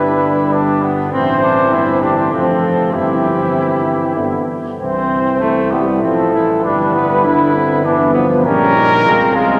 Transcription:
Already playing: tuba G1, trombone G3, french horn D4, trumpet E4, cornet B4
0.52 trumpet D4
0.83 trumpet B3
1.12 tuba A1, trombone E3, trumpet C4, french horn C4, cornet C5
1.43 trumpet D4
1.73 tuba G1, trumpet E4
2.01 trumpet D4, cornet G4
2.31 tuba F1, trombone F3, trumpet C4, french horn C4, cornet A4
2.61 cornet A4
2.93 tuba G1, trombone E3, french horn C4, trumpet E4, cornet G4
4.17 tuba G1, trombone D3, french horn B3
4.79 tuba C2, trombone E3, french horn C4, trumpet C4, cornet C5
5.40 trumpet A3, trombone A3, french horn E4
5.71 trombone G3, trumpet B3, cornet G4
6.03 tuba A1, trombone F3, trumpet C4, cornet A4
6.34 trombone E3, trumpet E4
6.64 tuba G1, trombone G3, trumpet D4, cornet B4
6.94 trumpet B3
7.24 trombone D3, french horn D4, trumpet E4
7.55 french horn C4
7.85 tuba G1, trombone E3, french horn B3, trumpet D4
8.14 trombone F3, trumpet B3
8.44 tuba A#1, trombone G3, trumpet C#4, french horn C#4, cornet A#4
8.75 french horn D#4
9.05 tuba C2, trombone G#3, trumpet C4, french horn F4
9.35 trombone G#3, trumpet G#3, cornet F4

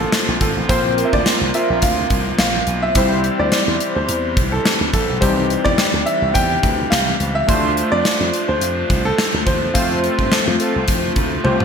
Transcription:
Already playing: pipe organ C3 F3 A#3 F4, synth keys A#3 C4 F4 C5
0.00 grand piano A4
0.12 snare, closed hi-hat
0.28 slap bass A#1
0.41 slap bass G#1, grand piano A4, kick, closed hi-hat
0.56 slap bass A1
0.69 slap bass A#1, synth keys A#3 C4 F4 C5, grand piano C5, kick, closed hi-hat
0.97 analog polysynth C4 F4 A#4, closed hi-hat
1.05 grand piano E5
1.13 slap bass D2, grand piano D5, kick
1.26 analog polysynth C4 F4 A#4, snare, closed hi-hat
1.41 slap bass C2
1.54 analog polysynth C4 F4 A#4, grand piano E5, closed hi-hat
1.70 slap bass A#1
1.82 slap bass D2, grand piano F5, kick, closed hi-hat
2.10 slap bass C2, kick, closed hi-hat
2.39 slap bass A#1, grand piano F5, snare, closed hi-hat
2.67 slap bass B1, closed hi-hat
2.82 grand piano E5
2.95 slap bass C2, pipe organ E3 G3 G4, synth keys G3 C4 E4 C5, kick, closed hi-hat
3.24 closed hi-hat
3.39 slap bass D2, grand piano D5
3.52 snare, closed hi-hat
3.68 slap bass E2
3.80 closed hi-hat
3.96 slap bass D2, grand piano C5
4.09 slap bass E2, closed hi-hat
4.37 slap bass C2, kick, closed hi-hat
4.52 grand piano A4
4.65 snare, closed hi-hat
4.81 slap bass D2
4.93 slap bass A#1, grand piano A4, kick, closed hi-hat
5.09 slap bass B1
5.20 slap bass C2, synth keys G3 C4 D#4 G4, grand piano C5, kick, closed hi-hat
5.29 synth keys E3
5.50 closed hi-hat
5.65 slap bass E2, grand piano D5, kick
5.78 snare, closed hi-hat
5.94 slap bass D2
6.06 grand piano E5, closed hi-hat
6.22 slap bass C2
6.34 slap bass E2, grand piano G5, kick, closed hi-hat
6.63 slap bass D2, kick, closed hi-hat
6.90 slap bass C2, grand piano F5, snare, closed hi-hat
7.20 slap bass C#2, closed hi-hat
7.35 grand piano E5
7.47 slap bass D2, pipe organ F3 A3 D4, synth keys A3 D4 F4 C5, kick, closed hi-hat
7.77 closed hi-hat
7.92 slap bass F2, grand piano D5
8.05 snare, closed hi-hat
8.20 slap bass F2
8.34 closed hi-hat
8.48 slap bass D2, grand piano C5
8.61 slap bass F2, closed hi-hat
8.90 slap bass C2, kick, closed hi-hat
9.05 grand piano A4
9.18 snare, closed hi-hat
9.34 slap bass D2
9.46 slap bass D#2, grand piano C5, kick, closed hi-hat
9.63 slap bass E2
9.74 slap bass F2, synth keys A3 C4 F4 C5, pipe organ F4, grand piano F5, kick, closed hi-hat
10.03 analog polysynth C4 F4 A4, closed hi-hat
10.19 slap bass G2, kick
10.32 analog polysynth C4 F4 A4, snare, closed hi-hat
10.47 slap bass F2
10.60 analog polysynth C4 F4 A4, closed hi-hat
10.76 slap bass C2
10.88 slap bass F2, kick, closed hi-hat
11.16 slap bass D2, kick, closed hi-hat
11.44 slap bass C2, synth keys A3 C4 F4 G4, grand piano C5, high tom
11.60 mid tom

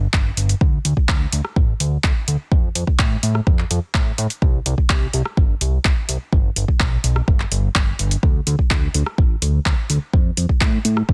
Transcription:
0.13 analog synth bass G1, kick, clap
0.37 analog synth bass G1, open hi-hat
0.49 open hi-hat
0.61 analog synth bass D2, kick
0.85 analog synth bass D2, open hi-hat
0.97 kick
1.09 analog synth bass D2, kick, clap
1.33 analog synth bass D2, open hi-hat
1.45 cross-stick
1.56 analog synth bass A1, kick
1.80 analog synth bass D2, open hi-hat
2.04 analog synth bass D2, kick, clap
2.28 analog synth bass D2, open hi-hat
2.52 analog synth bass F2, kick
2.75 analog synth bass F2, open hi-hat
2.87 kick
2.99 analog synth bass A2, kick, clap
3.23 analog synth bass A2, open hi-hat
3.35 cross-stick
3.47 analog synth bass F2, kick
3.59 clap
3.71 analog synth bass F2, open hi-hat
3.94 analog synth bass A2, kick, clap
4.18 analog synth bass A2, open hi-hat
4.30 open hi-hat
4.42 analog synth bass C2, kick
4.66 analog synth bass C2, open hi-hat
4.78 kick
4.90 analog synth bass C2, kick, clap
5.13 analog synth bass C2, open hi-hat
5.25 cross-stick
5.37 analog synth bass G1, kick
5.61 analog synth bass C2, open hi-hat
5.85 analog synth bass C2, kick, clap
6.09 analog synth bass C2, open hi-hat
6.33 analog synth bass G1, kick
6.56 analog synth bass G1, open hi-hat
6.68 kick
6.80 analog synth bass B1, kick, clap
7.04 analog synth bass B1, open hi-hat
7.16 cross-stick
7.28 analog synth bass G1, kick
7.40 clap
7.52 analog synth bass G1, open hi-hat
7.75 analog synth bass G1, kick, clap
7.99 analog synth bass G1, open hi-hat
8.11 open hi-hat
8.23 analog synth bass D2, kick
8.47 analog synth bass D2, open hi-hat
8.59 kick
8.71 analog synth bass D2, kick, clap
8.94 analog synth bass D2, open hi-hat
9.06 cross-stick
9.18 analog synth bass A1, kick
9.42 analog synth bass D2, open hi-hat
9.66 analog synth bass D2, kick, clap
9.90 analog synth bass D2, open hi-hat
10.13 analog synth bass F2, kick
10.37 analog synth bass F2, open hi-hat
10.49 kick
10.61 analog synth bass A2, kick, clap
10.85 analog synth bass A2, open hi-hat
10.97 cross-stick
11.09 analog synth bass F2, kick

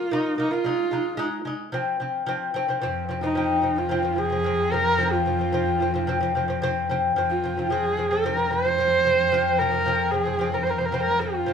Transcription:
Already playing: horsehead fiddle F4
0.11 lute A#3 F4, horsehead fiddle D#4
0.38 lute A#3 F4, horsehead fiddle D#4
0.51 lute A#3 F4, horsehead fiddle F4
0.64 lute G#3 D#4
0.91 lute G#3 D#4
1.17 lute G#3 D#4
1.45 lute G#3 D#4
1.72 lute F3 C4
2.00 lute F3 C4
2.26 lute F3 C4
2.54 lute F3 C4
2.68 lute F3 C4
2.81 cello F2, lute F3 C4
3.09 lute F3 C4
3.21 lute F3 C4, horsehead fiddle D#4
3.35 lute F3 C4
3.62 lute F3 C4
3.76 lute F3 C4, horsehead fiddle F4
3.89 lute F3 C4
4.03 lute F3 C4
4.16 lute F3 C4, horsehead fiddle G#4
4.30 lute F3 C4
4.44 lute F3 C4
4.72 lute F3 C4, horsehead fiddle A#4
4.98 lute F3 C4
5.12 horsehead fiddle F4
5.26 lute F3 C4
5.39 lute F3 C4
5.52 lute F3 C4
5.80 lute F3 C4
5.94 lute F3 C4
6.07 lute F3 C4
6.21 lute F3 C4
6.35 lute F3 C4
6.48 lute F3 C4
6.62 lute F3 C4
6.89 lute F3 C4
7.16 cello F2, lute F3 C4
7.30 horsehead fiddle F4
7.44 lute F3 C4
7.57 lute F3 C4
7.70 lute F3 C4, horsehead fiddle G#4
7.97 lute F3 C4
8.11 lute F3 C4, horsehead fiddle A#4
8.24 lute F3 C4
8.37 lute F3 C4
8.51 lute F3 C4, horsehead fiddle C5
8.65 lute F3 C4
8.78 lute F3 C4
9.05 lute F3 C4
9.32 lute F3 C4
9.59 lute F3 C4, horsehead fiddle A#4
9.72 lute F3 C4
9.86 lute F3 C4
10.11 lute F3 C4, horsehead fiddle G#4
10.25 lute F3 C4
10.39 lute F3 C4
10.52 lute F3 C4, horsehead fiddle A#4
10.63 lute F3 C4, horsehead fiddle C5
10.70 horsehead fiddle A#4
10.79 lute F3 C4, horsehead fiddle C5
10.85 horsehead fiddle A#4
10.92 lute F3 C4, horsehead fiddle C5
11.00 horsehead fiddle A#4
11.19 lute F3 C4, horsehead fiddle F4
11.46 cello F2, lute F3 C4

